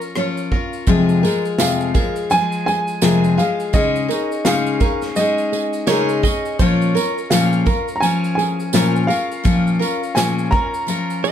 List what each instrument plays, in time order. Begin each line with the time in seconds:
Already playing: steel-string acoustic guitar F3 C#4 F4 A#4, upright piano A#5
0.01 shaker
0.16 steel-string acoustic guitar F3 C#4 F4 A#4, nylon-string guitar C#5, cross-stick, shaker
0.37 shaker
0.52 steel-string acoustic guitar C#4 F4 A#4, nylon-string guitar F5, kick
0.73 shaker
0.87 steel-string acoustic guitar F2 C3 F3 G#3 F4 G#4, kick, tambourine, shaker
1.09 shaker
1.23 steel-string acoustic guitar F3 G#3 F4 G#4, nylon-string guitar A#4, tambourine
1.45 shaker
1.58 steel-string acoustic guitar F2 C3 F3 G#3 F4 G#4, nylon-string guitar G#4, upright piano F5, snare, tambourine, shaker
1.81 shaker
1.94 steel-string acoustic guitar F3 G#3 F4 G#4, nylon-string guitar A#4, kick, tambourine
2.16 shaker
2.30 steel-string acoustic guitar F3 G#3 F4 G#4, upright piano G#5, tambourine, shaker
2.52 shaker
2.66 nylon-string guitar G#4, upright piano G#5, tambourine
2.87 shaker
3.02 steel-string acoustic guitar F2 C3 F3 G#3 F4 G#4, nylon-string guitar A#4, snare, tambourine, shaker
3.24 shaker
3.37 steel-string acoustic guitar F3 G#3 F4 G#4, nylon-string guitar G#4, upright piano F5, tambourine
3.60 shaker
3.73 steel-string acoustic guitar C#3 G#3 C#4 D#4 G#4, upright piano D#5, kick, tambourine, shaker
3.96 shaker
4.08 steel-string acoustic guitar C#4 D#4 G#4, nylon-string guitar A#4, tambourine
4.32 shaker
4.45 steel-string acoustic guitar C#3 G#3 C#4 D#4 G#4, nylon-string guitar G#4, upright piano F5, snare, tambourine, shaker
4.66 shaker
4.80 steel-string acoustic guitar C#4 D#4 G#4, nylon-string guitar A#4, kick, tambourine, shaker
5.02 snare, shaker
5.16 steel-string acoustic guitar G#3 C#4 D#4 G#4, upright piano D#5, tambourine, shaker
5.38 shaker
5.52 nylon-string guitar G#4, tambourine
5.73 shaker
5.87 steel-string acoustic guitar C#3 G#3 C#4 D#4 G#4, nylon-string guitar A#4, clean electric guitar C#5, snare, tambourine, shaker
6.09 shaker
6.23 steel-string acoustic guitar C#4 D#4 G#4, nylon-string guitar G#4, clean electric guitar D#5, kick, tambourine
6.45 shaker
6.59 steel-string acoustic guitar A#2 F3 C#4 F4 A#4, clean electric guitar C#5, kick, tambourine, shaker
6.82 shaker
6.95 steel-string acoustic guitar C#4 F4 A#4, nylon-string guitar A#4, tambourine, shaker
7.18 shaker
7.30 steel-string acoustic guitar A#2 F3 C#4 F4 A#4, nylon-string guitar G#4, upright piano F5, snare, tambourine, shaker
7.53 shaker
7.66 steel-string acoustic guitar C#4 F4 A#4, nylon-string guitar A#4, kick, tambourine
7.88 shaker
7.96 upright piano A#5
8.00 steel-string acoustic guitar F3 C#4, upright piano G#5, tambourine, shaker
8.05 steel-string acoustic guitar F4 A#4
8.24 shaker
8.35 nylon-string guitar G#4, upright piano G#5, tambourine
8.60 shaker
8.73 steel-string acoustic guitar A#2 F3 C#4 F4 A#4, nylon-string guitar A#4, snare, tambourine, shaker
8.96 shaker
9.07 steel-string acoustic guitar F4 A#4, nylon-string guitar G#4, upright piano F5, tambourine
9.12 steel-string acoustic guitar C#4
9.31 shaker
9.44 steel-string acoustic guitar A#2 F3 C#4 F4 A#4, kick, tambourine, shaker
9.67 shaker
9.79 steel-string acoustic guitar C#4 F4 A#4, nylon-string guitar A#4, tambourine
10.03 shaker
10.15 steel-string acoustic guitar A#2 F3 C#4 F4 A#4, nylon-string guitar G#4, upright piano G#5, snare, tambourine, shaker
10.38 shaker
10.51 steel-string acoustic guitar C#4 F4 A#4, nylon-string guitar A#4, upright piano A#5, kick
10.74 shaker
10.87 steel-string acoustic guitar F3 C#4 F4 A#4, tambourine, shaker
11.10 shaker
11.24 nylon-string guitar G#4, clean electric guitar D#5, tambourine